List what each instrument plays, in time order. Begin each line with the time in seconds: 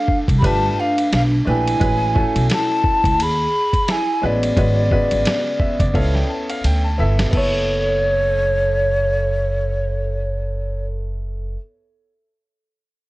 Already playing: upright piano A3 D4 G4 A4, vibraphone D4, flute F5
0.08 kick
0.28 upright bass C2, kick, ride
0.38 vibraphone G4, flute B5
0.42 upright bass G1, upright piano A3 D4 G4 B4, vibraphone F4, flute A5, kick, ride
0.79 vibraphone D4, flute F5
0.98 ride
1.13 upright bass B1, vibraphone D4, flute F5, snare, hi-hat pedal, ride
1.45 upright bass A#1, upright piano A3 D4 G4 B4, vibraphone E4, flute G#5
1.68 ride
1.79 upright bass A1, upright piano G#3 C#4 F#4 B4, kick, ride
2.14 upright piano A3 C#4 F#4 A4, kick
2.36 upright bass B1, ride
2.50 vibraphone E4, flute A5, snare, hi-hat pedal, ride
2.84 kick
3.04 upright bass C#2, kick, ride
3.20 upright bass D#2, vibraphone G#4, flute B5, ride
3.73 kick, ride
3.88 vibraphone E4, flute G#5, snare, hi-hat pedal, ride
4.22 upright bass A1, upright piano G#3 C#4 F#4 B4, vibraphone B3, flute D5
4.43 ride
4.57 upright bass G#1, upright piano G#3 C#4 F#4 B4, kick, ride
4.91 upright piano C#3 G#3 F#4 B4, kick
5.11 upright bass G#1, ride
5.26 snare, hi-hat pedal, ride
5.60 upright piano E5, kick
5.80 upright bass F#1, upright piano D5, kick, ride
5.94 upright bass C#2, upright piano B3 C#4 E4 A4 F5, kick, ride
6.14 upright piano G5, snare
6.29 upright piano A5
6.50 upright piano F5, ride
6.64 upright bass D2, upright piano G5, hi-hat pedal, ride
6.84 upright piano A5
6.98 upright bass G1, upright piano B3 E4 A4 E5 A5
7.19 snare, ride
7.31 upright bass F#1, upright piano B3 E4, vibraphone A4, kick, crash
7.35 upright piano A4 C#5, flute C#5